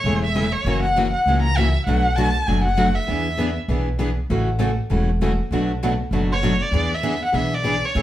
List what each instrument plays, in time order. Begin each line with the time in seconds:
Already playing: violin C#5
0.04 upright bass E1, steel-string acoustic guitar C#3 E3 G#3 A3 C#4 E4 G#4 A4
0.23 violin E5
0.35 steel-string acoustic guitar C#3 E3 G#3 A3 C#4 E4 G#4 A4
0.52 violin C#5
0.65 upright bass F#1, steel-string acoustic guitar C#3 E3 F#3 A#3 C#4 E4 F#4 A#4
0.83 violin F#5
0.96 steel-string acoustic guitar C#3 E3 F#3 A#3 C#4 E4 F#4 A#4
1.13 violin F#5
1.26 upright bass C#2, steel-string acoustic guitar C#3 E3 F#3 A#3 C#4 E4 F#4 A#4
1.42 violin A#5
1.57 steel-string acoustic guitar C#3 E3 F#3 A#3 C#4 E4 F#4 A#4, violin E5
1.87 upright bass B1, steel-string acoustic guitar B2 F#3 A3 D4 F#4 B4, violin F#5
2.16 steel-string acoustic guitar B2 F#3 A3 D4 F#4 B4, violin A5
2.47 upright bass F#1, steel-string acoustic guitar B2 F#3 A3 D4 F#4 B4, violin G#5
2.64 violin F#5
2.77 steel-string acoustic guitar B2 F#3 A3 D4 F#4 B4
2.95 violin E5
3.08 upright bass E2, steel-string acoustic guitar E3 B3 D4 G#4 B4
3.39 steel-string acoustic guitar E3 B3 D4 G#4 B4
3.68 upright bass B1, steel-string acoustic guitar E3 B3 D4 G#4 B4
3.99 steel-string acoustic guitar E3 B3 D4 G#4 B4
4.30 upright bass A1, steel-string acoustic guitar C#3 E3 A3 C#4 F#4 A4
4.59 steel-string acoustic guitar C#3 E3 A3 C#4 F#4 A4
4.90 upright bass E1, steel-string acoustic guitar C#3 E3 A3 C#4 F#4 A4
5.21 steel-string acoustic guitar C#3 E3 A3 C#4 F#4 A4
5.51 upright bass B1, steel-string acoustic guitar B2 F#3 A3 D4 F#4 B4
5.83 steel-string acoustic guitar B2 F#3 A3 D4 F#4 B4
6.11 upright bass F#1, steel-string acoustic guitar B2 F#3 A3 D4 F#4 B4
6.32 violin C#5
6.43 steel-string acoustic guitar B2 F#3 A3 D4 F#4 B4
6.62 violin D5
6.71 upright bass E2, steel-string acoustic guitar E3 B3 D4 G#4 B4
6.94 violin E5
7.03 steel-string acoustic guitar E3 B3 D4 G#4 B4
7.25 violin F#5
7.33 upright bass B1, steel-string acoustic guitar E3 B3 D4 G#4 B4
7.37 violin E5
7.54 violin D5
7.65 steel-string acoustic guitar E3 B3 D4 G#4 B4
7.85 violin C#5
7.95 upright bass A1, steel-string acoustic guitar C#3 E3 G#3 A3 C#4 E4 G#4 A4